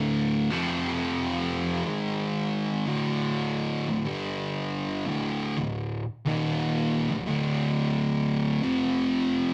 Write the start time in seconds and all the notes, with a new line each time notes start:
Already playing: D2 A2 D3
0.50 F2 C3 F3
1.85 G#2 D#3 G#3
2.86 D2 A2 D3
3.88 D2 A2
4.06 G2 D3 G3
5.07 D2 A2 D3
5.57 D2 A2
6.25 D#2 A#2 D#3
7.10 D2 A2
7.27 D2 A2 D3
8.62 F2 C3 F3